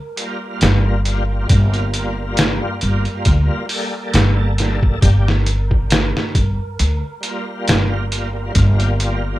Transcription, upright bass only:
0.62 1.46 G1 loud
1.50 2.58 G1 medium
2.83 3.04 G1 medium
3.26 3.48 D2 medium
4.14 4.99 G1 loud
5.03 6.11 G1 medium
6.36 6.57 G1 medium
6.80 7.01 D2 medium
7.69 8.53 G1 medium
8.56 9.39 G1 medium

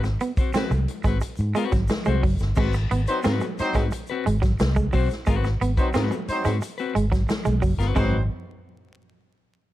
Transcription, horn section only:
3.08 3.19 F#3 medium
3.08 3.19 C4 medium
3.08 3.19 D#4 medium
3.08 3.19 C5 loud
3.59 3.80 F#3 loud
3.59 3.80 C4 loud
3.59 3.80 D#4 loud
3.59 3.80 C5 loud
5.78 5.88 F#3 loud
5.78 5.88 C4 medium
5.78 5.88 D#4 medium
5.78 5.88 C5 medium
6.29 6.50 F#3 medium
6.29 6.50 C4 medium
6.29 6.50 D#4 medium
6.29 6.50 C5 loud
7.97 8.20 F#3 medium
7.97 8.20 C4 medium
7.97 8.20 D#4 medium
7.97 8.20 C5 loud

